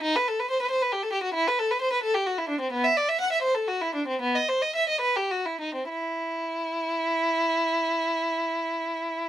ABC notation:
X:1
M:12/8
L:1/16
Q:3/8=78
K:Bphr
V:1 name="Violin"
^D B A B c B c B G A G F E B A B c B A G F E =D C | B, e d e f e c A F E D C B, ^d c d e d B G F E ^D C | E24 |]